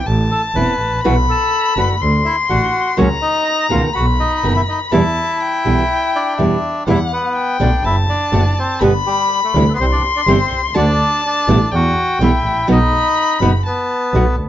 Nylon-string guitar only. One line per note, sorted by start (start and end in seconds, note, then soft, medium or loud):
0.55 0.72 E3 medium
0.55 0.73 B3 medium
0.55 0.73 C4 medium
0.55 0.73 E4 medium
1.04 1.13 B2 medium
1.04 1.13 E3 medium
1.04 1.13 B3 medium
1.04 1.13 E4 medium
1.04 1.14 F#4 medium
1.04 1.13 B4 medium
1.76 1.93 D3 medium
1.76 1.94 A3 medium
1.76 1.94 D4 medium
1.76 1.94 F#4 medium
2.49 2.66 D3 medium
2.49 2.67 A3 medium
2.49 2.67 D4 medium
2.49 2.67 F#4 medium
2.97 3.06 C#3 medium
2.97 3.07 F#3 medium
2.97 3.07 A#3 medium
2.97 3.07 C#4 medium
2.97 3.07 F#4 medium
3.69 3.87 B2 medium
3.69 3.87 D#3 medium
3.69 3.87 A3 medium
3.69 3.87 B3 medium
3.69 3.88 F#4 medium
4.43 4.60 B2 medium
4.43 4.60 D#3 medium
4.43 4.60 A3 medium
4.43 4.61 B3 medium
4.43 4.61 F#4 medium
4.91 5.01 B2 medium
4.91 5.01 E3 medium
4.91 5.01 G3 loud
4.91 5.01 B3 medium
4.91 5.01 E4 medium
5.65 5.82 B2 medium
5.65 5.82 E3 medium
5.65 5.82 G3 medium
5.65 5.82 B3 medium
5.65 5.82 E4 medium
6.38 6.55 B2 medium
6.38 6.55 E3 medium
6.38 6.56 G3 medium
6.38 6.56 B3 medium
6.38 6.56 E4 medium
6.87 6.96 B2 medium
6.87 6.96 E3 medium
6.87 6.96 G3 medium
6.87 6.96 B3 medium
6.87 6.96 E4 medium
7.60 7.69 D3 medium
7.60 7.69 A3 medium
7.60 7.69 D4 medium
7.60 7.69 F#4 medium
8.32 8.41 D3 medium
8.32 8.42 A3 medium
8.32 8.42 D4 medium
8.32 8.42 F#4 medium
8.81 8.90 B2 medium
8.81 8.90 D3 medium
8.81 8.90 G3 medium
8.81 8.90 B3 medium
8.81 8.90 G4 medium
9.55 9.63 C3 medium
9.55 9.64 E3 medium
9.55 9.64 G3 medium
9.55 9.64 C4 loud
9.55 9.64 E4 medium
10.27 10.36 C3 medium
10.27 10.36 E3 medium
10.27 10.36 G3 medium
10.27 10.36 C4 loud
10.27 10.37 E4 medium
10.74 10.84 D3 medium
10.74 10.84 A3 medium
10.74 10.84 D4 medium
10.74 10.84 F#4 loud
11.47 11.56 B2 medium
11.47 11.57 E3 medium
11.47 11.57 G3 medium
11.47 11.57 B3 loud
11.47 11.57 E4 medium
12.21 12.30 B2 medium
12.21 12.30 E3 medium
12.21 12.30 G3 medium
12.21 12.30 B3 medium
12.21 12.30 E4 medium
12.67 12.77 B2 medium
12.67 12.77 F#3 medium
12.67 12.78 B3 loud
12.67 12.77 D#4 medium
12.67 12.78 F#4 medium
13.41 13.51 B2 medium
13.41 13.51 F#3 medium
13.41 13.51 B3 medium
13.41 13.51 D#4 medium
13.41 13.51 F#4 medium
14.15 14.24 B2 medium
14.15 14.24 F#3 medium
14.15 14.24 B3 medium
14.15 14.24 D#4 medium
14.15 14.24 F#4 medium